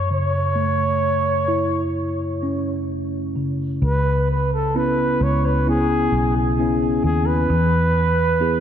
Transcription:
Already playing: tine electric piano F#2, flugelhorn C#5
0.10 tine electric piano C#3, flugelhorn C#5
0.55 tine electric piano A3
1.48 tine electric piano E4
2.42 tine electric piano C#4
3.36 tine electric piano C#3
3.82 fingered electric bass C#2, tine electric piano C#3, flugelhorn B4
4.31 flugelhorn B4
4.54 flugelhorn A4
4.75 tine electric piano B3 C#4 E4, flugelhorn B4
5.21 fingered electric bass C#2, flugelhorn C#5
5.46 flugelhorn B4
5.66 tine electric piano B3 C#4 E4, flugelhorn G#4
6.12 fingered electric bass B1
6.37 flugelhorn G#4
6.59 tine electric piano B3 C#4 E4
7.04 fingered electric bass D#2, flugelhorn G#4
7.26 flugelhorn B4
7.50 fingered electric bass E2, tine electric piano E3
8.40 tine electric piano B3 E4 G#4

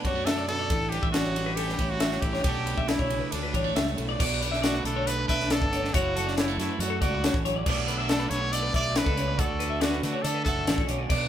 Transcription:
Already playing: clean electric guitar B2 D3 B3 D4
0.04 fingered electric bass F#2, clean electric guitar G3 C#5, trumpet F#4, kick, ride
0.15 clean electric guitar A3
0.25 clean electric guitar D3 E5, trumpet A4, snare, ride
0.38 clean electric guitar D5
0.48 clean electric guitar B2 B4, trumpet A4, ride
0.59 clean electric guitar D5
0.70 fingered electric bass A1, clean electric guitar A2 A4, kick, ride
0.89 clean electric guitar G3 B4, trumpet G4, ride
1.03 fingered electric bass A1, clean electric guitar E5, kick
1.11 clean electric guitar C#4 D5, trumpet F#4, snare, ride
1.24 clean electric guitar C#5
1.36 clean electric guitar G3, ride
1.46 clean electric guitar B4
1.54 clean electric guitar C#4 A4, trumpet G4, ride
1.68 clean electric guitar B4, snare
1.79 fingered electric bass A1, clean electric guitar E4 C#5, kick, ride
1.90 trumpet F#4
2.00 clean electric guitar G3 E5, snare, ride
2.11 clean electric guitar C#5, snare
2.21 fingered electric bass A1, clean electric guitar E3 A4, trumpet G4, kick, ride
2.33 clean electric guitar C#5, snare
2.44 fingered electric bass B1, clean electric guitar B2 D3 A3 A4, trumpet G4, kick, ride
2.49 clean electric guitar C#4 D4
2.66 clean electric guitar A3 B4, ride
2.77 fingered electric bass B1, clean electric guitar E5, kick
2.88 clean electric guitar B2 D5, trumpet E4, snare, ride
2.99 fingered electric bass B1, clean electric guitar C#5, kick
3.10 clean electric guitar C#3, ride
3.20 clean electric guitar B4
3.31 clean electric guitar D2 A4, fingered electric bass D2, trumpet D4, ride
3.43 clean electric guitar B4
3.53 fingered electric bass A1, clean electric guitar G3 C#5, kick, ride
3.64 clean electric guitar A3
3.76 fingered electric bass C#2, clean electric guitar G2 E5, snare, ride
3.87 clean electric guitar C#5
3.97 fingered electric bass B1, clean electric guitar A2 A4, ride
4.09 clean electric guitar D5
4.19 fingered electric bass B1, clean electric guitar B2 D4 D5, kick, crash
4.41 clean electric guitar D3 B4, closed hi-hat
4.52 clean electric guitar E5, snare
4.62 clean electric guitar A3 D5, trumpet F#4, snare, closed hi-hat
4.74 clean electric guitar B4
4.84 fingered electric bass B1, clean electric guitar D3, trumpet A4, closed hi-hat
4.96 clean electric guitar C#5
5.07 clean electric guitar A3 D5, trumpet B4, closed hi-hat
5.18 clean electric guitar B4
5.28 fingered electric bass B1, clean electric guitar D4 E5, trumpet B4, kick, closed hi-hat
5.40 snare
5.50 clean electric guitar B3 D5, trumpet A4, snare, closed hi-hat
5.62 fingered electric bass G1, clean electric guitar A4, kick
5.72 clean electric guitar D3 C#5, closed hi-hat
5.84 clean electric guitar D5, snare
5.94 fingered electric bass F#1, clean electric guitar F#2 E4 C#5, trumpet F#4, kick, closed hi-hat
6.16 clean electric guitar F#3 A4, closed hi-hat
6.27 clean electric guitar D5, snare
6.37 clean electric guitar G3 C#5, trumpet E4, snare, closed hi-hat
6.47 clean electric guitar A3 A4
6.57 fingered electric bass F#2, clean electric guitar F#3, trumpet E4, snare, closed hi-hat
6.69 clean electric guitar B4
6.79 fingered electric bass F#2, clean electric guitar A3 C#5, trumpet F#4, closed hi-hat
6.90 clean electric guitar A4
7.01 fingered electric bass C#2, clean electric guitar D4 D5, trumpet F#4, kick, closed hi-hat
7.14 clean electric guitar E4
7.23 clean electric guitar C#4 C#5, snare, closed hi-hat
7.34 fingered electric bass A1, clean electric guitar A4, kick
7.45 clean electric guitar F#3 C#5, closed hi-hat
7.56 clean electric guitar D5
7.66 fingered electric bass B1, clean electric guitar B2 D3 A3 B3 D4 D5, kick, crash
7.88 clean electric guitar D3 B4, closed hi-hat
7.98 clean electric guitar E5
8.08 clean electric guitar A3 D5, trumpet A4, snare, closed hi-hat
8.19 clean electric guitar B4
8.30 fingered electric bass B1, trumpet C#5, closed hi-hat
8.41 clean electric guitar C#5
8.52 clean electric guitar A3 D5, trumpet D5, closed hi-hat
8.63 clean electric guitar B4
8.74 fingered electric bass B1, clean electric guitar D4 E5, trumpet D5, kick, closed hi-hat
8.95 clean electric guitar B2 D5, trumpet B4, snare, closed hi-hat
9.06 fingered electric bass C#2, clean electric guitar A4, kick
9.17 clean electric guitar C#3 C#5, closed hi-hat
9.28 clean electric guitar D5
9.37 clean electric guitar D2 F#4 D5, fingered electric bass D2, trumpet A4, kick, closed hi-hat
9.59 clean electric guitar D3 B4, closed hi-hat
9.70 clean electric guitar E5
9.80 clean electric guitar A3 D5, trumpet F#4, snare, closed hi-hat
9.91 clean electric guitar B4
10.03 fingered electric bass D3, clean electric guitar D3, trumpet F#4, snare, closed hi-hat
10.13 clean electric guitar C#5
10.22 fingered electric bass D3, trumpet A4, clean electric guitar D5, closed hi-hat
10.26 clean electric guitar A3
10.34 clean electric guitar B4
10.44 fingered electric bass F#1, clean electric guitar F#4 E5, trumpet A4, kick, closed hi-hat
10.67 fingered electric bass A1, clean electric guitar C#4 D5, snare, closed hi-hat
10.78 clean electric guitar A4, kick
10.87 fingered electric bass B1, clean electric guitar D3 C#5, closed hi-hat
10.98 clean electric guitar D5
11.10 fingered electric bass B1, clean electric guitar B2 D4 D5, kick, crash

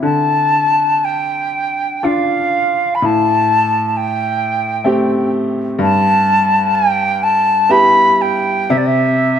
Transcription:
0.03 upright piano D3, flute A5
1.04 flute G5
2.03 upright piano D4 F4, flute F5
2.95 flute B5
3.02 upright piano A2, flute A5
3.88 flute A5
3.97 flute G5
4.84 upright piano A3 C4 G4
5.79 upright piano G2, flute A5
6.75 flute G5
7.23 flute A5
7.69 upright piano B3 E4 G4, flute B5
8.21 flute G5
8.70 upright piano C3, flute E5
8.78 flute D5
8.86 flute E5

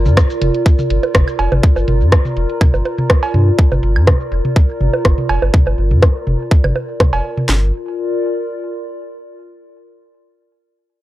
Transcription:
Already playing: ambient pad F4 A#4 D5, synth texture A#4
0.06 sub bass G2, high tom, shaker
0.17 kick, cross-stick, shaker
0.30 shaker
0.41 sub bass F1, closed hi-hat, high tom
0.54 closed hi-hat
0.66 kick, shaker
0.79 high tom, shaker
0.90 sub bass G1, closed hi-hat
1.03 closed hi-hat, high bongo
1.15 sub bass G1, kick, cross-stick, high tom, shaker
1.28 claves, shaker
1.39 sub bass F1, closed hi-hat, cowbell
1.52 sub bass G1, high tom, high bongo
1.63 kick, shaker
1.76 sub bass G1, high bongo, shaker
1.88 sub bass G1, closed hi-hat, high tom
2.01 sub bass G2, shaker
2.12 kick, cross-stick, shaker
2.25 high tom, shaker
2.37 sub bass F1, closed hi-hat
2.50 closed hi-hat
2.61 kick, high tom, claves, shaker
2.74 sub bass G1, high bongo, shaker
2.85 closed hi-hat, high bongo
2.98 closed hi-hat, high tom
3.10 kick, cross-stick, shaker
3.23 cowbell, shaker
3.34 sub bass G2, closed hi-hat, high tom
3.59 kick
3.71 sub bass G1, high tom, high bongo, shaker
3.83 sub bass G1, closed hi-hat
3.96 sub bass G2, claves, shaker
4.07 kick, cross-stick, high tom
4.20 shaker
4.32 sub bass F1, closed hi-hat
4.45 closed hi-hat, high tom
4.56 kick
4.69 shaker
4.81 sub bass G1, closed hi-hat, high tom
4.93 closed hi-hat, high bongo
5.05 sub bass G1, kick, cross-stick
5.18 high tom, shaker
5.29 sub bass F1, closed hi-hat, cowbell, claves
5.42 sub bass G1, high bongo
5.54 kick, high tom
5.67 sub bass G1, high bongo, shaker
5.78 sub bass G1, closed hi-hat
5.91 sub bass G2, high tom, shaker
6.02 kick, cross-stick
6.15 shaker
6.27 sub bass F1, closed hi-hat, high tom
6.40 closed hi-hat, shaker
6.51 kick
6.64 sub bass G1, high tom, high bongo, claves, shaker
6.76 closed hi-hat, high bongo
6.89 closed hi-hat, shaker
7.00 kick, cross-stick, high tom
7.13 sub bass F1, cowbell
7.25 closed hi-hat
7.37 high tom, shaker
7.49 sub bass G1, ambient pad F4, snare, clap
7.57 ambient pad A#4
7.64 ambient pad D5

